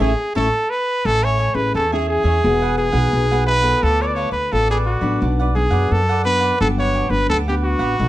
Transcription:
0.00 upright bass A1, nylon-string guitar A3 C#4 E4, trumpet G#4, cavaquinho A4 C#5 E5
0.35 upright bass A1, nylon-string guitar A3 C#4 E4, cavaquinho A4 C#5 E5, trumpet A4
0.70 trumpet B4
1.04 upright bass A1, nylon-string guitar A3, cavaquinho A4 C#5 E5 G#5, trumpet A4
1.23 trumpet C#5, cavaquinho C#5 E5 G#5
1.37 cavaquinho A4 C#5 E5 G#5
1.54 upright bass A1, nylon-string guitar C#4 E4 G#4, trumpet B4, muted cavaquinho stroke
1.74 upright bass E2, nylon-string guitar E3, cavaquinho A4 C#5 E5 G#5, trumpet A4
1.92 nylon-string guitar C#4 E4 G#4, trumpet G#4, cavaquinho C#5 E5 G#5
2.08 trumpet G#4
2.23 upright bass E2, cavaquinho C#5 E5 G#5
2.43 upright bass E1, nylon-string guitar E3 B3 F#4 G#4, cavaquinho E4 G#4 B4 F#5
2.62 cavaquinho G#4 B4 F#5
2.77 trumpet G#4, muted cavaquinho stroke
2.92 upright bass B1, nylon-string guitar B3 F#4 G#4, cavaquinho G#4 B4 F#5
3.13 upright bass B1, nylon-string guitar B2
3.31 nylon-string guitar B3 F#4 G#4, cavaquinho G#4 B4 F#5
3.46 cavaquinho E4 G#4 B4 F#5, trumpet B4
3.62 nylon-string guitar B3 F4 A4, cavaquinho G#4 B4 F#5
3.83 upright bass D2, nylon-string guitar D3, cavaquinho F4 A4 B4 D5, trumpet A4
4.01 cavaquinho A4 B4 D5, trumpet C#5
4.07 trumpet D5
4.14 cavaquinho F4 A4 B4 D5, trumpet C#5
4.31 upright bass D2, trumpet B4, muted cavaquinho stroke
4.51 upright bass A1, nylon-string guitar A2 B3 F4 A4, cavaquinho F4 A4 B4 D5, trumpet A4
4.70 trumpet G#4, cavaquinho A4 B4 D5
4.85 trumpet F#4
5.01 upright bass A1, nylon-string guitar F#3 B3 D4, cavaquinho A4 B4 D5
5.20 upright bass B1, nylon-string guitar B2, cavaquinho D4 B4 D5 F#5
5.39 cavaquinho B4 D5 F#5
5.55 nylon-string guitar F#3 B3 D4, trumpet G#4, muted cavaquinho stroke
5.71 upright bass F#2, cavaquinho B4 D5 F#5
5.91 nylon-string guitar F#2, upright bass F#2, trumpet A4
6.09 cavaquinho B4 D5 F#5
6.24 nylon-string guitar F#3 B3 D4, cavaquinho D4 B4 D5 F#5, trumpet B4
6.40 cavaquinho B4 D5 F#5
6.60 upright bass G1, nylon-string guitar G2 F#3 B3 D4, cavaquinho D4 G4 B4 F#5, trumpet A4
6.78 cavaquinho G4 B4 F#5, trumpet C#5
6.93 cavaquinho D4 G4 B4 F#5
7.10 upright bass G1, nylon-string guitar F#3 B3 D4, trumpet B4, muted cavaquinho stroke
7.29 upright bass D2, nylon-string guitar D3, cavaquinho D4 G4 B4 F#5, trumpet A4
7.48 nylon-string guitar B3 D4, trumpet G4, cavaquinho G4 B4 F#5
7.63 trumpet F#4
7.79 upright bass A1, cavaquinho G4 B4 F#5
7.99 upright bass B1, nylon-string guitar B2 F#3 A3 D#4, cavaquinho D#4 A4 B4 D#5

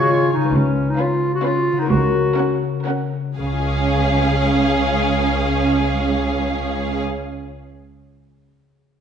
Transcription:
Already playing: bassoon C#3, harp C#3 G#3 F4 G#4 C#5 F5, french horn section G#3 F4, oboe C#5, flute section C#6
0.00 clarinet F#4, harp C#6
0.10 clarinet F4, harp G#5
0.21 harp C#5
0.32 harp C#3 F4, clarinet D#4
0.40 harp G#3 F4
0.45 harp B4
0.50 harp C#5
0.55 double bass section C#2, cello section C#2, clarinet C#4
0.90 clarinet D#4
0.99 viola section C#4, clarinet F4, violin section B4 F5
1.34 clarinet F#4
1.44 viola section C#4, clarinet F4, violin section B4 F5
1.72 harp C#3
1.77 clarinet D#4, harp F#4
1.81 harp A#4
1.86 clarinet F#4, harp C#5
1.90 cello section C#2, double bass section C#2
2.37 viola section C#4, violin section A#4 F#5
2.86 viola section C#4, violin section A#4 F#5
3.39 double bass section C#2, cello section C#2, harp C#3, clarinet C#4, viola section C#4, violin section G#4 F5
3.46 harp C#4
3.53 harp F4
3.60 harp G#4
3.67 harp C#5
3.74 harp G#5

